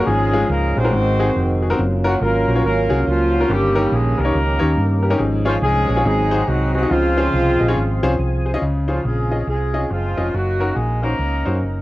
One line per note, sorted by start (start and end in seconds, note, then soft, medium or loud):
0.05 0.43 G#1 medium
0.05 0.72 G#2 medium
0.05 0.90 F3 medium
0.05 0.48 G#3 loud
0.05 0.91 G#3 medium
0.05 0.90 C#4 medium
0.05 0.88 C#4 medium
0.05 0.88 F4 medium
0.05 0.13 F#4 medium
0.05 0.48 G#4 loud
0.12 0.93 G#4 medium
0.34 0.42 G#3 medium
0.34 0.42 C#4 medium
0.34 0.42 F4 medium
0.34 0.42 G#4 medium
0.48 0.72 C#2 medium
0.48 0.74 A#3 medium
0.48 0.74 A#4 loud
0.76 0.90 A#1 medium
0.76 1.61 C4 medium
0.76 1.58 D#4 medium
0.76 0.80 F4 soft
0.76 1.58 F#4 medium
0.76 0.81 G#4 soft
0.76 1.61 C5 loud
0.84 0.92 G#3 medium
0.84 0.92 C#4 medium
0.84 0.92 F4 medium
0.84 0.92 A#4 medium
0.93 1.29 G#1 loud
0.93 1.58 G#2 medium
0.93 1.76 D#3 medium
0.93 1.77 G#3 medium
0.93 1.77 C4 medium
0.93 1.76 F#4 medium
1.19 1.28 C4 medium
1.19 1.27 D#4 medium
1.19 1.28 F#4 medium
1.19 1.28 G#4 medium
1.36 1.72 F1 medium
1.62 1.66 F#4 soft
1.62 1.66 G#4 medium
1.70 1.78 C4 medium
1.70 1.78 D#4 medium
1.70 1.78 F#4 medium
1.70 1.78 A#4 medium
1.78 2.15 F#1 medium
1.78 3.46 F#3 medium
1.78 3.46 A#3 medium
1.78 3.46 C#4 medium
1.78 3.46 F4 medium
2.04 2.20 F#3 medium
2.04 2.13 C#4 medium
2.04 2.13 F4 medium
2.04 2.13 F#4 medium
2.04 2.20 F#4 medium
2.04 2.13 A#4 medium
2.21 2.44 G#1 medium
2.21 2.63 A#3 medium
2.21 2.63 C#4 medium
2.21 2.63 F4 medium
2.21 2.63 A#4 loud
2.47 2.61 A#1 medium
2.47 2.51 F#4 soft
2.47 2.52 C5 soft
2.55 2.64 C#4 medium
2.55 2.64 F4 medium
2.55 2.64 F#4 medium
2.55 2.64 C#5 medium
2.64 2.87 G#1 medium
2.64 3.04 A#3 medium
2.64 3.07 C#4 medium
2.64 3.07 F4 medium
2.64 3.04 A#4 loud
2.89 3.04 C2 loud
2.89 2.98 C#4 medium
2.89 2.98 F4 medium
2.89 2.98 F#4 medium
2.89 2.98 G#4 medium
3.07 3.43 C#2 medium
3.07 3.50 F3 medium
3.07 3.47 A#3 medium
3.07 3.47 C#4 medium
3.07 3.50 F4 medium
3.32 3.37 F#4 soft
3.32 3.37 C5 soft
3.40 3.49 C#4 medium
3.40 3.48 F4 medium
3.40 3.49 F#4 medium
3.40 3.49 A#4 medium
3.48 3.85 G1 loud
3.48 4.14 G2 medium
3.48 5.17 D#3 medium
3.48 3.92 G3 loud
3.48 5.17 A#3 medium
3.48 4.19 A#3 medium
3.48 5.17 C#4 medium
3.48 4.18 C#4 medium
3.48 3.56 F4 medium
3.48 3.92 G4 loud
3.56 5.20 G4 medium
3.75 3.84 C#4 medium
3.75 3.84 D#4 medium
3.75 3.84 G4 medium
3.75 3.84 A#4 medium
3.92 4.15 A#1 medium
3.92 4.19 G#3 medium
3.92 4.19 G#4 medium
4.18 4.32 C2 medium
4.18 5.04 A#3 medium
4.18 5.00 C#4 medium
4.18 5.00 D#4 medium
4.18 4.22 G4 soft
4.18 4.22 A#4 soft
4.18 5.04 A#4 loud
4.25 4.34 C#4 medium
4.25 4.34 D#4 medium
4.25 4.34 G4 medium
4.25 4.34 C#5 medium
4.35 4.57 C#2 medium
4.59 4.75 D#2 loud
4.59 4.68 C#4 medium
4.59 4.68 D#4 medium
4.59 4.68 G4 medium
4.59 4.68 C#5 medium
4.77 5.13 G2 medium
5.02 5.07 G4 medium
5.02 5.07 A#4 medium
5.10 5.19 C#4 medium
5.10 5.19 D#4 medium
5.10 5.19 G4 medium
5.10 5.19 A#4 medium
5.18 5.56 G#1 medium
5.18 5.84 G#2 medium
5.18 6.03 F3 medium
5.18 6.03 G#3 medium
5.18 6.03 C#4 medium
5.18 6.03 G#4 medium
5.45 5.54 F3 medium
5.45 5.54 C#4 medium
5.45 5.54 F4 medium
5.45 5.54 G#4 medium
5.45 5.54 C#5 medium
5.62 5.85 C2 medium
5.62 6.02 G#3 loud
5.62 6.03 C#4 medium
5.62 6.03 F4 medium
5.62 6.02 G#4 loud
5.88 6.03 A#1 medium
5.88 5.93 G#4 soft
5.88 5.93 C#5 soft
5.96 6.05 C#4 medium
5.96 6.05 F4 medium
5.96 6.05 G#4 medium
5.96 6.05 C#5 medium
6.04 6.42 G#1 loud
6.04 6.70 G#2 medium
6.04 6.89 F#3 medium
6.04 6.45 G#3 medium
6.04 6.87 C4 medium
6.04 6.89 C4 medium
6.04 6.89 D#4 medium
6.04 6.87 D#4 medium
6.04 6.45 G#4 loud
6.04 6.89 G#4 medium
6.31 6.40 D#4 medium
6.31 6.40 F#4 medium
6.31 6.40 G#4 medium
6.31 6.40 C5 medium
6.47 6.84 C2 medium
6.47 6.72 F#3 medium
6.47 6.72 F#4 medium
6.73 6.89 F#3 medium
6.73 6.89 F#4 loud
6.73 6.79 G#4 soft
6.73 6.79 C5 soft
6.83 6.91 D#4 medium
6.83 6.91 F#4 medium
6.83 6.91 G#4 medium
6.83 6.91 D#5 medium
6.90 7.27 C#2 loud
6.90 7.56 C#3 medium
6.90 8.18 F3 medium
6.90 8.58 F3 medium
6.90 8.15 G#3 medium
6.90 8.58 C4 medium
6.90 8.15 C4 medium
6.90 8.18 F4 loud
6.90 8.58 F4 medium
6.90 8.58 G#4 medium
7.17 7.26 C#4 medium
7.17 7.25 F4 medium
7.17 7.26 G#4 medium
7.17 7.26 C5 medium
7.34 7.56 C2 medium
7.60 7.74 A#1 medium
7.60 7.64 G#4 soft
7.60 7.64 D#5 medium
7.60 7.75 D#5 medium
7.68 7.77 C#4 medium
7.68 7.77 F4 medium
7.68 7.77 G#4 medium
7.68 7.77 C#5 medium
7.76 7.99 G#1 medium
7.76 8.16 F5 medium
8.03 8.17 C2 medium
8.03 8.11 C#4 medium
8.03 8.11 F4 medium
8.03 8.11 G#4 medium
8.03 8.11 C5 loud
8.19 8.55 C2 medium
8.19 8.59 G#5 medium
8.45 8.50 G#4 medium
8.45 8.50 C5 medium
8.54 8.62 C#4 medium
8.54 8.62 F4 medium
8.54 8.62 G#4 medium
8.54 8.62 D#5 medium
8.62 8.98 C#2 medium
8.62 9.28 C#3 medium
8.88 9.04 F3 medium
8.88 8.96 C#4 medium
8.88 8.96 F4 medium
8.88 9.04 F4 medium
8.88 8.97 G#4 medium
8.88 8.96 C5 medium
9.05 9.41 A#1 medium
9.05 9.48 G#3 medium
9.05 9.48 C4 medium
9.05 9.48 F4 medium
9.05 9.48 G#4 medium
9.31 9.40 C#4 medium
9.31 9.40 F4 medium
9.31 9.40 G#4 soft
9.31 9.40 D#5 medium
9.47 9.84 C2 medium
9.47 9.88 G#3 medium
9.47 9.89 C4 medium
9.47 9.89 F4 medium
9.47 9.88 G#4 medium
9.74 9.82 C#4 medium
9.74 9.82 F4 medium
9.74 9.82 G#4 medium
9.74 9.82 D#5 medium
9.90 10.13 F#1 medium
9.90 10.33 F3 medium
9.90 10.30 G#3 medium
9.90 10.30 C4 medium
9.90 10.33 F4 medium
10.17 10.31 F1 medium
10.17 10.26 C#4 medium
10.17 10.26 F4 medium
10.17 10.26 G#4 medium
10.17 10.26 D#5 medium
10.33 10.70 F#1 medium
10.33 10.76 F#3 medium
10.33 11.02 A#3 medium
10.33 11.02 D#4 medium
10.33 10.76 F#4 medium
10.60 10.68 C#4 medium
10.60 10.69 D#4 medium
10.60 10.69 F#4 medium
10.60 10.69 A#4 medium
10.75 11.13 A#1 medium
10.75 11.03 G#3 medium
10.75 11.03 G#4 medium
11.02 11.82 A#3 medium
11.02 11.82 C#4 medium
11.02 11.12 C#4 medium
11.02 11.82 D#4 medium
11.02 11.12 D#4 medium
11.02 11.12 F#4 medium
11.02 11.82 A#4 medium
11.02 11.12 C5 medium
11.19 11.42 C#2 medium
11.45 11.60 F#2 medium
11.45 11.54 C#4 medium
11.45 11.54 D#4 medium
11.45 11.54 F#4 medium
11.45 11.54 C5 medium
11.63 11.82 F#1 medium